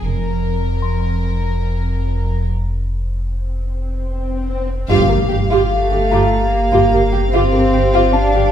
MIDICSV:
0, 0, Header, 1, 12, 480
1, 0, Start_track
1, 0, Tempo, 810811
1, 18, Time_signature, 3, 2, 24, 8
1, 5042, End_track
2, 0, Start_track
2, 0, Title_t, "Celesta"
2, 0, Program_c, 0, 8
2, 0, Control_c, 0, 64, 127
2, 29, Control_c, 0, 64, 0
2, 133, Control_c, 0, 64, 127
2, 487, Note_on_c, 0, 84, 34
2, 1429, Note_off_c, 0, 84, 0
2, 2911, Control_c, 0, 64, 0
2, 3018, Control_c, 0, 64, 127
2, 3619, Note_on_c, 0, 82, 31
2, 4814, Note_on_c, 0, 81, 42
2, 5035, Note_off_c, 0, 82, 0
2, 5042, Note_off_c, 0, 81, 0
2, 5042, End_track
3, 0, Start_track
3, 0, Title_t, "Violin section"
3, 0, Program_c, 1, 48
3, 17, Note_on_c, 1, 70, 38
3, 1457, Note_off_c, 1, 70, 0
3, 2901, Note_on_c, 1, 77, 49
3, 5042, Note_off_c, 1, 77, 0
3, 5042, End_track
4, 0, Start_track
4, 0, Title_t, "French horn section"
4, 0, Program_c, 2, 60
4, 2895, Note_on_c, 2, 77, 58
4, 2896, Note_on_c, 2, 67, 51
4, 5042, Note_off_c, 2, 67, 0
4, 5042, Note_off_c, 2, 77, 0
4, 5042, End_track
5, 0, Start_track
5, 0, Title_t, "Viola section"
5, 0, Program_c, 3, 48
5, 2901, Note_on_c, 3, 67, 59
5, 3011, Note_off_c, 3, 67, 0
5, 3021, Note_on_c, 3, 67, 26
5, 3068, Note_off_c, 3, 67, 0
5, 3145, Note_on_c, 3, 67, 26
5, 3191, Note_off_c, 3, 67, 0
5, 3265, Note_on_c, 3, 67, 49
5, 3374, Note_off_c, 3, 67, 0
5, 3506, Note_on_c, 3, 67, 32
5, 3553, Note_off_c, 3, 67, 0
5, 3623, Note_on_c, 3, 67, 45
5, 3732, Note_off_c, 3, 67, 0
5, 3984, Note_on_c, 3, 67, 48
5, 4093, Note_off_c, 3, 67, 0
5, 4106, Note_on_c, 3, 67, 35
5, 4153, Note_off_c, 3, 67, 0
5, 4223, Note_on_c, 3, 67, 33
5, 4270, Note_off_c, 3, 67, 0
5, 4342, Note_on_c, 3, 67, 45
5, 4452, Note_off_c, 3, 67, 0
5, 4463, Note_on_c, 3, 67, 36
5, 4510, Note_off_c, 3, 67, 0
5, 4581, Note_on_c, 3, 67, 34
5, 4628, Note_off_c, 3, 67, 0
5, 4704, Note_on_c, 3, 67, 47
5, 4813, Note_off_c, 3, 67, 0
5, 4940, Note_on_c, 3, 67, 35
5, 4988, Note_off_c, 3, 67, 0
5, 5042, End_track
6, 0, Start_track
6, 0, Title_t, "Violin section"
6, 0, Program_c, 4, 48
6, 2892, Note_on_c, 4, 65, 56
6, 3006, Note_off_c, 4, 65, 0
6, 3010, Note_on_c, 4, 70, 29
6, 3057, Note_off_c, 4, 70, 0
6, 3132, Note_on_c, 4, 67, 28
6, 3179, Note_off_c, 4, 67, 0
6, 3254, Note_on_c, 4, 65, 41
6, 3367, Note_off_c, 4, 65, 0
6, 3498, Note_on_c, 4, 67, 28
6, 3546, Note_off_c, 4, 67, 0
6, 3613, Note_on_c, 4, 65, 46
6, 3727, Note_off_c, 4, 65, 0
6, 3973, Note_on_c, 4, 65, 40
6, 4087, Note_off_c, 4, 65, 0
6, 4095, Note_on_c, 4, 70, 37
6, 4143, Note_off_c, 4, 70, 0
6, 4212, Note_on_c, 4, 67, 39
6, 4259, Note_off_c, 4, 67, 0
6, 4337, Note_on_c, 4, 65, 48
6, 4449, Note_off_c, 4, 65, 0
6, 4455, Note_on_c, 4, 70, 38
6, 4503, Note_off_c, 4, 70, 0
6, 4576, Note_on_c, 4, 67, 30
6, 4623, Note_off_c, 4, 67, 0
6, 4696, Note_on_c, 4, 65, 57
6, 4808, Note_off_c, 4, 65, 0
6, 4939, Note_on_c, 4, 67, 36
6, 4986, Note_off_c, 4, 67, 0
6, 5042, End_track
7, 0, Start_track
7, 0, Title_t, "Cello section"
7, 0, Program_c, 5, 48
7, 21, Note_on_c, 5, 41, 37
7, 1436, Note_off_c, 5, 41, 0
7, 3379, Note_on_c, 5, 57, 50
7, 3835, Note_off_c, 5, 57, 0
7, 3860, Note_on_c, 5, 58, 43
7, 4336, Note_on_c, 5, 60, 55
7, 4339, Note_off_c, 5, 58, 0
7, 4807, Note_off_c, 5, 60, 0
7, 4820, Note_on_c, 5, 62, 56
7, 5042, Note_off_c, 5, 62, 0
7, 5042, End_track
8, 0, Start_track
8, 0, Title_t, "Timpani"
8, 0, Program_c, 6, 47
8, 2897, Note_on_c, 6, 43, 46
8, 3594, Note_off_c, 6, 43, 0
8, 5042, End_track
9, 0, Start_track
9, 0, Title_t, "Double bass section"
9, 0, Program_c, 7, 48
9, 17, Note_on_c, 7, 29, 41
9, 474, Note_off_c, 7, 29, 0
9, 2896, Note_on_c, 7, 31, 62
9, 3009, Note_off_c, 7, 31, 0
9, 3017, Note_on_c, 7, 31, 28
9, 3065, Note_off_c, 7, 31, 0
9, 3141, Note_on_c, 7, 31, 31
9, 3189, Note_off_c, 7, 31, 0
9, 3258, Note_on_c, 7, 31, 44
9, 3306, Note_off_c, 7, 31, 0
9, 3499, Note_on_c, 7, 31, 33
9, 3547, Note_off_c, 7, 31, 0
9, 3621, Note_on_c, 7, 31, 39
9, 3668, Note_off_c, 7, 31, 0
9, 3980, Note_on_c, 7, 31, 48
9, 4027, Note_off_c, 7, 31, 0
9, 4100, Note_on_c, 7, 31, 37
9, 4147, Note_off_c, 7, 31, 0
9, 4220, Note_on_c, 7, 31, 39
9, 4267, Note_off_c, 7, 31, 0
9, 4340, Note_on_c, 7, 31, 41
9, 4388, Note_off_c, 7, 31, 0
9, 4462, Note_on_c, 7, 31, 31
9, 4509, Note_off_c, 7, 31, 0
9, 4586, Note_on_c, 7, 31, 35
9, 4632, Note_off_c, 7, 31, 0
9, 4702, Note_on_c, 7, 31, 43
9, 4749, Note_off_c, 7, 31, 0
9, 4942, Note_on_c, 7, 31, 35
9, 4989, Note_off_c, 7, 31, 0
9, 5042, End_track
10, 0, Start_track
10, 0, Title_t, "Sub bass"
10, 0, Program_c, 8, 38
10, 13, Note_on_c, 8, 29, 57
10, 2872, Note_off_c, 8, 29, 0
10, 2895, Note_on_c, 8, 31, 59
10, 5042, Note_off_c, 8, 31, 0
10, 5042, End_track
11, 0, Start_track
11, 0, Title_t, "Impact"
11, 0, Program_c, 10, 103
11, 2897, Note_on_c, 10, 60, 45
11, 4337, Note_off_c, 10, 60, 0
11, 5042, End_track
12, 0, Start_track
12, 0, Title_t, "Swell"
12, 0, Program_c, 11, 103
12, 1457, Note_on_c, 11, 60, 28
12, 2897, Note_off_c, 11, 60, 0
12, 5042, End_track
0, 0, End_of_file